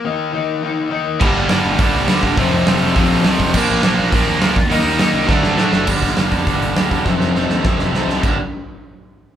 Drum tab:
CC |--------|x-------|--------|x-------|
HH |--------|--o-o-o-|o-o-o-o-|--o-o-o-|
SD |--------|--o---o-|--o---o-|--o---o-|
BD |--------|o---o--o|o---o--o|o---o--o|

CC |--------|x-------|--------|x-------|
HH |o-o-----|-ooooooo|--------|--------|
SD |--o-oooo|--o---o-|oooooooo|--------|
BD |----o---|oo-oo--o|o---o---|o-------|